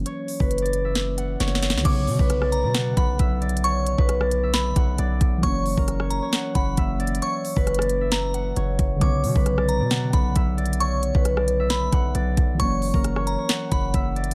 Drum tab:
CC |------------------------------------------------|x-----------------------------------------------|------------------------------------------------|------------------------------------------------|
HH |x-----o-----x-x-x-x-----x-----x-----x-----x-----|x-----o-----x-----x-----x-----x-----x-----x-x-x-|x-----x-----x-----x-----x-----x-----x-----x-----|x-----o-----x-----x-----x-----x-----x-----x-x-x-|
SD |------------------------o-----------o-o-o-o-o-o-|------------r--r--------o-----------------------|------------r--r--------o-----------------------|------------r--r--------o-----------------------|
BD |---------o--------------------------------------|o--------o--------------------o-----o-----------|---------o--------------------o-----------o-----|o--------o--------------------o-----o-----------|

CC |------------------------------------------------|------------------------------------------------|------------------------------------------------|------------------------------------------------|
HH |x-----o-----x-x-x-x-----x-----x-----x-----x-----|x-----o-----x-----x-----x-----x-----x-----x-x-x-|x-----x-----x-----x-----x-----x-----x-----x-----|x-----o-----x-----x-----x-----x-----x-----x-x---|
SD |------------r--r--------o-----------------------|------------r--r--------o-----------------------|------------r--r--------o-----------------------|------------r--r--------o-----------------------|
BD |---------o--------------------------------o-----|o--------o--------------------o-----o-----------|---------o--------------------o-----------o-----|o--------o--------------------o-----o-----------|